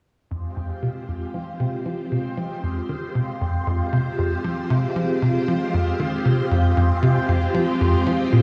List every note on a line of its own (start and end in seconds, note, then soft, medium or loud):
0.31 0.53 F2 medium
0.31 8.42 G#3 medium
0.31 8.42 C4 medium
0.31 8.42 F4 medium
0.31 8.42 G4 medium
0.31 8.42 C5 medium
0.56 0.72 F2 medium
0.82 0.98 C3 medium
1.08 1.17 F2 medium
1.34 1.49 F3 medium
1.60 1.75 C3 medium
1.86 1.95 F3 medium
2.12 2.27 C3 medium
2.37 2.47 F3 medium
2.63 2.72 F2 medium
2.89 3.04 D#3 medium
3.15 3.30 C3 medium
3.41 3.64 F2 medium
3.67 3.82 F2 medium
3.93 4.08 C3 medium
4.19 4.28 F2 medium
4.45 4.60 F3 medium
4.70 4.86 C3 medium
4.96 5.05 F3 medium
5.22 5.37 C3 medium
5.48 5.57 F3 medium
5.74 5.83 F2 medium
6.00 6.15 D#3 medium
6.25 6.41 C3 medium
6.51 6.74 F2 medium
6.77 6.92 F2 medium
7.03 7.18 C3 medium
7.29 7.38 F2 medium
7.55 7.70 F3 medium
7.81 7.96 F2 medium
8.06 8.29 F3 medium
8.32 8.41 A#2 medium